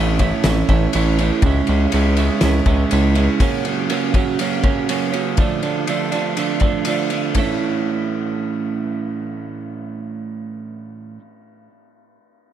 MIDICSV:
0, 0, Header, 1, 4, 480
1, 0, Start_track
1, 0, Key_signature, 3, "major"
1, 0, Tempo, 494641
1, 1387, Time_signature, 4, 2, 24, 8
1, 12159, End_track
2, 0, Start_track
2, 0, Title_t, "Clean electric guitar"
2, 0, Program_c, 0, 27
2, 0, Note_on_c, 0, 52, 77
2, 0, Note_on_c, 0, 57, 69
2, 0, Note_on_c, 0, 61, 75
2, 0, Note_on_c, 0, 64, 72
2, 188, Note_off_c, 0, 64, 0
2, 189, Note_off_c, 0, 57, 0
2, 192, Note_on_c, 0, 64, 84
2, 194, Note_off_c, 0, 61, 0
2, 198, Note_on_c, 0, 61, 86
2, 199, Note_off_c, 0, 52, 0
2, 201, Note_on_c, 0, 57, 71
2, 203, Note_on_c, 0, 52, 74
2, 214, Note_on_c, 0, 45, 73
2, 416, Note_off_c, 0, 52, 0
2, 422, Note_off_c, 0, 57, 0
2, 427, Note_on_c, 0, 52, 64
2, 433, Note_off_c, 0, 64, 0
2, 434, Note_on_c, 0, 57, 73
2, 438, Note_off_c, 0, 61, 0
2, 442, Note_on_c, 0, 61, 80
2, 445, Note_on_c, 0, 64, 74
2, 654, Note_off_c, 0, 64, 0
2, 664, Note_off_c, 0, 57, 0
2, 666, Note_on_c, 0, 64, 92
2, 667, Note_off_c, 0, 52, 0
2, 670, Note_off_c, 0, 61, 0
2, 674, Note_on_c, 0, 61, 87
2, 676, Note_on_c, 0, 57, 74
2, 677, Note_off_c, 0, 45, 0
2, 678, Note_on_c, 0, 52, 77
2, 688, Note_on_c, 0, 45, 70
2, 902, Note_off_c, 0, 52, 0
2, 910, Note_off_c, 0, 57, 0
2, 913, Note_on_c, 0, 52, 70
2, 916, Note_off_c, 0, 64, 0
2, 920, Note_off_c, 0, 61, 0
2, 921, Note_on_c, 0, 57, 80
2, 924, Note_on_c, 0, 61, 77
2, 928, Note_on_c, 0, 64, 87
2, 1144, Note_off_c, 0, 64, 0
2, 1156, Note_on_c, 0, 64, 61
2, 1157, Note_off_c, 0, 45, 0
2, 1162, Note_off_c, 0, 61, 0
2, 1166, Note_on_c, 0, 61, 56
2, 1169, Note_off_c, 0, 57, 0
2, 1180, Note_on_c, 0, 57, 54
2, 1375, Note_off_c, 0, 52, 0
2, 1377, Note_off_c, 0, 64, 0
2, 1389, Note_off_c, 0, 57, 0
2, 1396, Note_on_c, 0, 49, 81
2, 1406, Note_on_c, 0, 56, 79
2, 1413, Note_off_c, 0, 61, 0
2, 1416, Note_on_c, 0, 61, 79
2, 1420, Note_on_c, 0, 64, 90
2, 1629, Note_off_c, 0, 64, 0
2, 1641, Note_on_c, 0, 64, 66
2, 1650, Note_off_c, 0, 61, 0
2, 1654, Note_on_c, 0, 61, 57
2, 1655, Note_off_c, 0, 56, 0
2, 1667, Note_on_c, 0, 56, 55
2, 1864, Note_off_c, 0, 49, 0
2, 1870, Note_off_c, 0, 56, 0
2, 1875, Note_on_c, 0, 49, 70
2, 1882, Note_off_c, 0, 61, 0
2, 1882, Note_on_c, 0, 56, 72
2, 1884, Note_off_c, 0, 64, 0
2, 1886, Note_on_c, 0, 61, 76
2, 1895, Note_on_c, 0, 64, 77
2, 2105, Note_off_c, 0, 64, 0
2, 2116, Note_on_c, 0, 64, 83
2, 2121, Note_off_c, 0, 56, 0
2, 2121, Note_off_c, 0, 61, 0
2, 2124, Note_off_c, 0, 49, 0
2, 2125, Note_on_c, 0, 61, 73
2, 2133, Note_on_c, 0, 56, 72
2, 2135, Note_on_c, 0, 49, 66
2, 2349, Note_off_c, 0, 49, 0
2, 2351, Note_off_c, 0, 56, 0
2, 2360, Note_on_c, 0, 49, 63
2, 2363, Note_off_c, 0, 61, 0
2, 2363, Note_on_c, 0, 56, 69
2, 2370, Note_off_c, 0, 64, 0
2, 2375, Note_on_c, 0, 61, 69
2, 2382, Note_on_c, 0, 64, 72
2, 2574, Note_off_c, 0, 64, 0
2, 2585, Note_on_c, 0, 64, 86
2, 2587, Note_off_c, 0, 61, 0
2, 2592, Note_off_c, 0, 56, 0
2, 2598, Note_on_c, 0, 61, 82
2, 2601, Note_off_c, 0, 49, 0
2, 2604, Note_on_c, 0, 56, 80
2, 2612, Note_on_c, 0, 49, 67
2, 2811, Note_off_c, 0, 49, 0
2, 2819, Note_off_c, 0, 56, 0
2, 2823, Note_on_c, 0, 49, 66
2, 2825, Note_off_c, 0, 61, 0
2, 2831, Note_on_c, 0, 56, 75
2, 2837, Note_off_c, 0, 64, 0
2, 2837, Note_on_c, 0, 61, 71
2, 2849, Note_on_c, 0, 64, 83
2, 3056, Note_off_c, 0, 64, 0
2, 3063, Note_off_c, 0, 61, 0
2, 3067, Note_on_c, 0, 64, 73
2, 3073, Note_off_c, 0, 56, 0
2, 3074, Note_on_c, 0, 61, 58
2, 3085, Note_on_c, 0, 56, 59
2, 3289, Note_off_c, 0, 49, 0
2, 3291, Note_off_c, 0, 64, 0
2, 3295, Note_off_c, 0, 61, 0
2, 3300, Note_off_c, 0, 56, 0
2, 3301, Note_on_c, 0, 42, 75
2, 3308, Note_on_c, 0, 49, 81
2, 3314, Note_on_c, 0, 54, 81
2, 3318, Note_on_c, 0, 58, 98
2, 3319, Note_on_c, 0, 61, 89
2, 3537, Note_off_c, 0, 61, 0
2, 3548, Note_on_c, 0, 61, 62
2, 3551, Note_off_c, 0, 58, 0
2, 3562, Note_on_c, 0, 58, 58
2, 3564, Note_off_c, 0, 54, 0
2, 3575, Note_on_c, 0, 54, 51
2, 3772, Note_off_c, 0, 49, 0
2, 3778, Note_off_c, 0, 54, 0
2, 3781, Note_off_c, 0, 58, 0
2, 3782, Note_off_c, 0, 42, 0
2, 3783, Note_on_c, 0, 49, 76
2, 3790, Note_off_c, 0, 61, 0
2, 3790, Note_on_c, 0, 54, 77
2, 3793, Note_on_c, 0, 58, 79
2, 3802, Note_on_c, 0, 61, 80
2, 4010, Note_off_c, 0, 61, 0
2, 4016, Note_off_c, 0, 58, 0
2, 4021, Note_off_c, 0, 54, 0
2, 4022, Note_on_c, 0, 61, 85
2, 4027, Note_on_c, 0, 58, 73
2, 4028, Note_off_c, 0, 49, 0
2, 4033, Note_on_c, 0, 54, 81
2, 4039, Note_on_c, 0, 49, 65
2, 4046, Note_on_c, 0, 42, 67
2, 4252, Note_off_c, 0, 49, 0
2, 4261, Note_off_c, 0, 54, 0
2, 4263, Note_on_c, 0, 49, 68
2, 4267, Note_off_c, 0, 58, 0
2, 4272, Note_on_c, 0, 54, 72
2, 4273, Note_off_c, 0, 61, 0
2, 4279, Note_on_c, 0, 58, 71
2, 4285, Note_on_c, 0, 61, 71
2, 4487, Note_off_c, 0, 61, 0
2, 4492, Note_off_c, 0, 58, 0
2, 4498, Note_on_c, 0, 61, 80
2, 4499, Note_off_c, 0, 54, 0
2, 4504, Note_on_c, 0, 58, 82
2, 4506, Note_off_c, 0, 49, 0
2, 4508, Note_off_c, 0, 42, 0
2, 4511, Note_on_c, 0, 54, 76
2, 4517, Note_on_c, 0, 49, 68
2, 4519, Note_on_c, 0, 42, 75
2, 4730, Note_off_c, 0, 49, 0
2, 4736, Note_off_c, 0, 54, 0
2, 4742, Note_on_c, 0, 49, 71
2, 4743, Note_off_c, 0, 58, 0
2, 4748, Note_off_c, 0, 61, 0
2, 4748, Note_on_c, 0, 54, 70
2, 4755, Note_on_c, 0, 58, 67
2, 4759, Note_on_c, 0, 61, 73
2, 4959, Note_off_c, 0, 61, 0
2, 4970, Note_on_c, 0, 61, 65
2, 4975, Note_off_c, 0, 58, 0
2, 4982, Note_off_c, 0, 54, 0
2, 4987, Note_on_c, 0, 58, 58
2, 4991, Note_off_c, 0, 42, 0
2, 4994, Note_on_c, 0, 54, 53
2, 5203, Note_off_c, 0, 61, 0
2, 5208, Note_off_c, 0, 49, 0
2, 5211, Note_off_c, 0, 58, 0
2, 5214, Note_off_c, 0, 54, 0
2, 5219, Note_on_c, 0, 50, 79
2, 5226, Note_on_c, 0, 53, 80
2, 5239, Note_on_c, 0, 57, 87
2, 5244, Note_on_c, 0, 62, 84
2, 5450, Note_off_c, 0, 62, 0
2, 5458, Note_off_c, 0, 57, 0
2, 5462, Note_on_c, 0, 62, 69
2, 5470, Note_on_c, 0, 57, 57
2, 5472, Note_off_c, 0, 53, 0
2, 5484, Note_on_c, 0, 53, 53
2, 5688, Note_off_c, 0, 50, 0
2, 5700, Note_on_c, 0, 50, 65
2, 5702, Note_off_c, 0, 53, 0
2, 5710, Note_off_c, 0, 57, 0
2, 5713, Note_on_c, 0, 53, 69
2, 5715, Note_off_c, 0, 62, 0
2, 5721, Note_on_c, 0, 57, 77
2, 5726, Note_on_c, 0, 62, 69
2, 5925, Note_off_c, 0, 62, 0
2, 5935, Note_off_c, 0, 57, 0
2, 5937, Note_on_c, 0, 62, 79
2, 5940, Note_off_c, 0, 53, 0
2, 5947, Note_on_c, 0, 57, 70
2, 5949, Note_off_c, 0, 50, 0
2, 5952, Note_on_c, 0, 53, 67
2, 5960, Note_on_c, 0, 50, 62
2, 6173, Note_off_c, 0, 50, 0
2, 6180, Note_off_c, 0, 53, 0
2, 6185, Note_on_c, 0, 50, 65
2, 6186, Note_off_c, 0, 57, 0
2, 6191, Note_on_c, 0, 53, 67
2, 6195, Note_off_c, 0, 62, 0
2, 6198, Note_on_c, 0, 57, 63
2, 6207, Note_on_c, 0, 62, 66
2, 6402, Note_off_c, 0, 62, 0
2, 6410, Note_off_c, 0, 57, 0
2, 6414, Note_on_c, 0, 62, 85
2, 6422, Note_off_c, 0, 53, 0
2, 6422, Note_on_c, 0, 57, 77
2, 6428, Note_off_c, 0, 50, 0
2, 6434, Note_on_c, 0, 53, 64
2, 6439, Note_on_c, 0, 50, 65
2, 6646, Note_off_c, 0, 50, 0
2, 6655, Note_off_c, 0, 53, 0
2, 6658, Note_on_c, 0, 50, 66
2, 6663, Note_off_c, 0, 57, 0
2, 6667, Note_on_c, 0, 53, 70
2, 6669, Note_off_c, 0, 62, 0
2, 6675, Note_on_c, 0, 57, 74
2, 6681, Note_on_c, 0, 62, 75
2, 6893, Note_off_c, 0, 62, 0
2, 6903, Note_off_c, 0, 57, 0
2, 6905, Note_on_c, 0, 62, 61
2, 6913, Note_off_c, 0, 53, 0
2, 6914, Note_on_c, 0, 57, 53
2, 6925, Note_on_c, 0, 53, 52
2, 7128, Note_off_c, 0, 50, 0
2, 7131, Note_off_c, 0, 62, 0
2, 7136, Note_off_c, 0, 57, 0
2, 7136, Note_on_c, 0, 45, 71
2, 7141, Note_off_c, 0, 53, 0
2, 7144, Note_on_c, 0, 52, 86
2, 7155, Note_on_c, 0, 57, 81
2, 7162, Note_on_c, 0, 61, 83
2, 7172, Note_on_c, 0, 64, 92
2, 10841, Note_off_c, 0, 45, 0
2, 10850, Note_off_c, 0, 52, 0
2, 10860, Note_off_c, 0, 57, 0
2, 10868, Note_off_c, 0, 61, 0
2, 10878, Note_off_c, 0, 64, 0
2, 12159, End_track
3, 0, Start_track
3, 0, Title_t, "Analog synth bass"
3, 0, Program_c, 1, 38
3, 0, Note_on_c, 1, 33, 80
3, 316, Note_off_c, 1, 33, 0
3, 435, Note_on_c, 1, 33, 88
3, 610, Note_off_c, 1, 33, 0
3, 672, Note_on_c, 1, 33, 86
3, 848, Note_off_c, 1, 33, 0
3, 921, Note_on_c, 1, 33, 89
3, 1270, Note_off_c, 1, 33, 0
3, 1383, Note_on_c, 1, 37, 94
3, 1561, Note_off_c, 1, 37, 0
3, 1638, Note_on_c, 1, 37, 90
3, 1810, Note_off_c, 1, 37, 0
3, 1879, Note_on_c, 1, 37, 79
3, 2228, Note_off_c, 1, 37, 0
3, 2358, Note_on_c, 1, 37, 95
3, 2530, Note_off_c, 1, 37, 0
3, 2582, Note_on_c, 1, 37, 86
3, 2760, Note_off_c, 1, 37, 0
3, 2837, Note_on_c, 1, 37, 91
3, 3187, Note_off_c, 1, 37, 0
3, 12159, End_track
4, 0, Start_track
4, 0, Title_t, "Drums"
4, 185, Note_on_c, 9, 51, 66
4, 189, Note_on_c, 9, 36, 79
4, 282, Note_off_c, 9, 51, 0
4, 286, Note_off_c, 9, 36, 0
4, 423, Note_on_c, 9, 51, 76
4, 426, Note_on_c, 9, 38, 104
4, 520, Note_off_c, 9, 51, 0
4, 523, Note_off_c, 9, 38, 0
4, 667, Note_on_c, 9, 51, 60
4, 668, Note_on_c, 9, 36, 81
4, 764, Note_off_c, 9, 51, 0
4, 765, Note_off_c, 9, 36, 0
4, 903, Note_on_c, 9, 51, 79
4, 1000, Note_off_c, 9, 51, 0
4, 1150, Note_on_c, 9, 51, 54
4, 1247, Note_off_c, 9, 51, 0
4, 1379, Note_on_c, 9, 51, 69
4, 1383, Note_on_c, 9, 36, 98
4, 1476, Note_off_c, 9, 51, 0
4, 1480, Note_off_c, 9, 36, 0
4, 1619, Note_on_c, 9, 51, 58
4, 1716, Note_off_c, 9, 51, 0
4, 1862, Note_on_c, 9, 51, 72
4, 1959, Note_off_c, 9, 51, 0
4, 2101, Note_on_c, 9, 51, 59
4, 2199, Note_off_c, 9, 51, 0
4, 2336, Note_on_c, 9, 51, 73
4, 2339, Note_on_c, 9, 38, 99
4, 2433, Note_off_c, 9, 51, 0
4, 2436, Note_off_c, 9, 38, 0
4, 2579, Note_on_c, 9, 51, 57
4, 2581, Note_on_c, 9, 36, 75
4, 2676, Note_off_c, 9, 51, 0
4, 2678, Note_off_c, 9, 36, 0
4, 2822, Note_on_c, 9, 51, 84
4, 2919, Note_off_c, 9, 51, 0
4, 3059, Note_on_c, 9, 51, 58
4, 3156, Note_off_c, 9, 51, 0
4, 3300, Note_on_c, 9, 36, 95
4, 3301, Note_on_c, 9, 51, 81
4, 3397, Note_off_c, 9, 36, 0
4, 3398, Note_off_c, 9, 51, 0
4, 3540, Note_on_c, 9, 51, 59
4, 3637, Note_off_c, 9, 51, 0
4, 3781, Note_on_c, 9, 51, 82
4, 3878, Note_off_c, 9, 51, 0
4, 4018, Note_on_c, 9, 36, 77
4, 4019, Note_on_c, 9, 51, 63
4, 4115, Note_off_c, 9, 36, 0
4, 4116, Note_off_c, 9, 51, 0
4, 4259, Note_on_c, 9, 51, 81
4, 4356, Note_off_c, 9, 51, 0
4, 4497, Note_on_c, 9, 51, 51
4, 4499, Note_on_c, 9, 36, 74
4, 4594, Note_off_c, 9, 51, 0
4, 4596, Note_off_c, 9, 36, 0
4, 4744, Note_on_c, 9, 51, 81
4, 4841, Note_off_c, 9, 51, 0
4, 4983, Note_on_c, 9, 51, 55
4, 5080, Note_off_c, 9, 51, 0
4, 5212, Note_on_c, 9, 51, 67
4, 5220, Note_on_c, 9, 36, 98
4, 5309, Note_off_c, 9, 51, 0
4, 5317, Note_off_c, 9, 36, 0
4, 5459, Note_on_c, 9, 51, 54
4, 5556, Note_off_c, 9, 51, 0
4, 5700, Note_on_c, 9, 51, 71
4, 5797, Note_off_c, 9, 51, 0
4, 5938, Note_on_c, 9, 51, 55
4, 6035, Note_off_c, 9, 51, 0
4, 6179, Note_on_c, 9, 51, 69
4, 6276, Note_off_c, 9, 51, 0
4, 6402, Note_on_c, 9, 51, 49
4, 6415, Note_on_c, 9, 36, 69
4, 6499, Note_off_c, 9, 51, 0
4, 6512, Note_off_c, 9, 36, 0
4, 6644, Note_on_c, 9, 51, 76
4, 6741, Note_off_c, 9, 51, 0
4, 6889, Note_on_c, 9, 51, 54
4, 6986, Note_off_c, 9, 51, 0
4, 7128, Note_on_c, 9, 51, 73
4, 7131, Note_on_c, 9, 36, 59
4, 7225, Note_off_c, 9, 51, 0
4, 7228, Note_off_c, 9, 36, 0
4, 12159, End_track
0, 0, End_of_file